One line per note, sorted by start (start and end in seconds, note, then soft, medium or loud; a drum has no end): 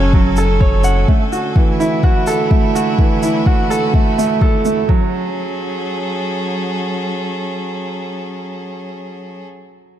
0.00 1.06 F#1 medium
0.00 0.14 F#3 medium
0.00 1.08 F#3 medium
0.00 1.10 C#4 medium
0.00 1.77 C#4 medium
0.00 0.38 A4 medium
0.00 1.74 A4 medium
0.00 0.60 C#5 medium
0.00 0.84 F#5 medium
0.00 2.25 G#5 medium
0.13 0.36 F#3 medium
0.13 kick loud
0.36 0.60 A4 medium
0.36 shaker medium
0.60 0.83 C#5 medium
0.60 kick loud
0.84 0.98 F#5 medium
0.84 shaker medium
1.07 4.88 D3 medium
1.07 1.22 A3 medium
1.07 kick medium
1.32 1.55 F#4 medium
1.32 shaker medium
1.56 1.79 E3 medium
1.56 4.89 A3 medium
1.56 kick loud
1.70 4.89 E4 medium
1.80 2.02 E4 medium
1.80 shaker medium
2.03 2.26 F#4 medium
2.03 kick loud
2.27 2.41 A4 medium
2.27 shaker medium
2.51 2.64 A3 medium
2.51 kick loud
2.73 4.88 F#4 medium
2.73 2.98 F#4 medium
2.73 shaker medium
2.98 3.21 E3 medium
2.98 kick medium
3.23 3.45 E4 medium
3.23 shaker medium
3.46 3.69 F#4 medium
3.46 kick medium
3.70 3.84 A4 medium
3.70 shaker medium
3.94 4.08 A3 medium
3.94 kick medium
4.18 4.31 A3 medium
4.18 shaker medium
4.41 4.64 A4 medium
4.41 kick medium
4.65 4.88 A3 medium
4.65 shaker medium
4.88 9.39 F#3 medium
4.88 5.11 F#3 medium
4.88 kick medium
4.98 9.47 C#4 medium
5.03 9.46 G#4 medium
5.09 9.45 A4 medium